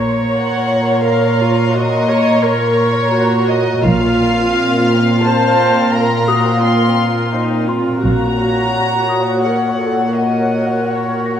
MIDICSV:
0, 0, Header, 1, 8, 480
1, 0, Start_track
1, 0, Tempo, 699301
1, 1196, Time_signature, 3, 2, 24, 8
1, 5994, Tempo, 724638
1, 7760, End_track
2, 0, Start_track
2, 0, Title_t, "Celesta"
2, 0, Program_c, 0, 8
2, 0, Control_c, 0, 64, 127
2, 0, Note_on_c, 0, 89, 35
2, 679, Note_off_c, 0, 89, 0
2, 1664, Note_on_c, 0, 82, 41
2, 1903, Note_on_c, 0, 85, 28
2, 2645, Control_c, 0, 64, 0
2, 2774, Control_c, 0, 64, 127
2, 3079, Note_off_c, 0, 82, 0
2, 3319, Note_off_c, 0, 85, 0
2, 4311, Note_on_c, 0, 87, 48
2, 5277, Note_on_c, 0, 84, 34
2, 5526, Control_c, 0, 64, 0
2, 5636, Control_c, 0, 64, 127
2, 5724, Note_off_c, 0, 87, 0
2, 6231, Note_on_c, 0, 87, 20
2, 6678, Note_off_c, 0, 84, 0
2, 7647, Note_off_c, 0, 87, 0
2, 7666, Note_on_c, 0, 94, 15
2, 7760, Note_off_c, 0, 94, 0
2, 7760, End_track
3, 0, Start_track
3, 0, Title_t, "Violin section"
3, 0, Program_c, 1, 48
3, 0, Note_on_c, 1, 82, 36
3, 228, Note_on_c, 1, 84, 37
3, 714, Note_on_c, 1, 85, 39
3, 2364, Note_off_c, 1, 84, 0
3, 2366, Note_off_c, 1, 82, 0
3, 2366, Note_off_c, 1, 85, 0
3, 2634, Note_on_c, 1, 89, 41
3, 2635, Note_on_c, 1, 84, 40
3, 4766, Note_off_c, 1, 89, 0
3, 5247, Note_off_c, 1, 84, 0
3, 7760, End_track
4, 0, Start_track
4, 0, Title_t, "Violin section"
4, 0, Program_c, 2, 48
4, 235, Note_on_c, 2, 78, 55
4, 687, Note_off_c, 2, 78, 0
4, 709, Note_on_c, 2, 77, 55
4, 1185, Note_off_c, 2, 77, 0
4, 1191, Note_on_c, 2, 75, 69
4, 1671, Note_off_c, 2, 75, 0
4, 1671, Note_on_c, 2, 73, 69
4, 2392, Note_off_c, 2, 73, 0
4, 2394, Note_on_c, 2, 75, 68
4, 2630, Note_on_c, 2, 77, 73
4, 2634, Note_off_c, 2, 75, 0
4, 3588, Note_on_c, 2, 81, 67
4, 3590, Note_off_c, 2, 77, 0
4, 4066, Note_on_c, 2, 82, 66
4, 4072, Note_off_c, 2, 81, 0
4, 4549, Note_off_c, 2, 82, 0
4, 4549, Note_on_c, 2, 84, 53
4, 5022, Note_off_c, 2, 84, 0
4, 5507, Note_on_c, 2, 82, 66
4, 6436, Note_off_c, 2, 82, 0
4, 6463, Note_on_c, 2, 78, 39
4, 6933, Note_off_c, 2, 78, 0
4, 6942, Note_on_c, 2, 75, 32
4, 7425, Note_on_c, 2, 73, 23
4, 7428, Note_off_c, 2, 75, 0
4, 7760, Note_off_c, 2, 73, 0
4, 7760, End_track
5, 0, Start_track
5, 0, Title_t, "Synth texture"
5, 0, Program_c, 3, 99
5, 0, Note_on_c, 3, 70, 45
5, 0, Note_on_c, 3, 73, 47
5, 0, Note_on_c, 3, 82, 45
5, 2607, Note_off_c, 3, 82, 0
5, 2608, Note_off_c, 3, 70, 0
5, 2631, Note_on_c, 3, 60, 51
5, 2634, Note_off_c, 3, 73, 0
5, 2635, Note_on_c, 3, 70, 52
5, 2635, Note_on_c, 3, 77, 47
5, 5486, Note_off_c, 3, 70, 0
5, 5511, Note_off_c, 3, 60, 0
5, 5512, Note_on_c, 3, 73, 41
5, 5513, Note_off_c, 3, 77, 0
5, 5514, Note_on_c, 3, 66, 44
5, 5515, Note_on_c, 3, 78, 47
5, 7760, Note_off_c, 3, 66, 0
5, 7760, Note_off_c, 3, 73, 0
5, 7760, Note_off_c, 3, 78, 0
5, 7760, End_track
6, 0, Start_track
6, 0, Title_t, "Viola section"
6, 0, Program_c, 4, 48
6, 0, Note_on_c, 4, 73, 47
6, 691, Note_off_c, 4, 73, 0
6, 716, Note_on_c, 4, 70, 49
6, 957, Note_off_c, 4, 70, 0
6, 958, Note_on_c, 4, 65, 48
6, 1198, Note_off_c, 4, 65, 0
6, 1201, Note_on_c, 4, 66, 47
6, 1438, Note_off_c, 4, 66, 0
6, 1439, Note_on_c, 4, 73, 60
6, 1675, Note_off_c, 4, 73, 0
6, 1676, Note_on_c, 4, 70, 51
6, 2153, Note_off_c, 4, 70, 0
6, 2154, Note_on_c, 4, 66, 54
6, 2625, Note_off_c, 4, 66, 0
6, 2636, Note_on_c, 4, 65, 55
6, 3591, Note_on_c, 4, 72, 54
6, 3593, Note_off_c, 4, 65, 0
6, 4074, Note_off_c, 4, 72, 0
6, 4075, Note_on_c, 4, 70, 45
6, 4309, Note_off_c, 4, 70, 0
6, 4318, Note_on_c, 4, 66, 44
6, 4555, Note_off_c, 4, 66, 0
6, 4556, Note_on_c, 4, 65, 37
6, 5035, Note_off_c, 4, 65, 0
6, 5038, Note_on_c, 4, 63, 44
6, 5276, Note_off_c, 4, 63, 0
6, 5276, Note_on_c, 4, 65, 40
6, 5514, Note_off_c, 4, 65, 0
6, 5515, Note_on_c, 4, 66, 41
6, 6448, Note_off_c, 4, 66, 0
6, 6464, Note_on_c, 4, 70, 30
6, 6701, Note_on_c, 4, 69, 26
6, 6702, Note_off_c, 4, 70, 0
6, 6943, Note_off_c, 4, 69, 0
6, 6946, Note_on_c, 4, 70, 23
6, 7760, Note_off_c, 4, 70, 0
6, 7760, End_track
7, 0, Start_track
7, 0, Title_t, "Cello section"
7, 0, Program_c, 5, 48
7, 0, Note_on_c, 5, 46, 44
7, 2605, Note_off_c, 5, 46, 0
7, 2636, Note_on_c, 5, 46, 54
7, 5486, Note_off_c, 5, 46, 0
7, 5515, Note_on_c, 5, 46, 36
7, 7760, Note_off_c, 5, 46, 0
7, 7760, End_track
8, 0, Start_track
8, 0, Title_t, "Double bass section"
8, 0, Program_c, 6, 48
8, 0, Note_on_c, 6, 34, 38
8, 203, Note_off_c, 6, 34, 0
8, 2636, Note_on_c, 6, 34, 51
8, 3086, Note_off_c, 6, 34, 0
8, 5513, Note_on_c, 6, 34, 36
8, 5968, Note_off_c, 6, 34, 0
8, 7760, End_track
0, 0, End_of_file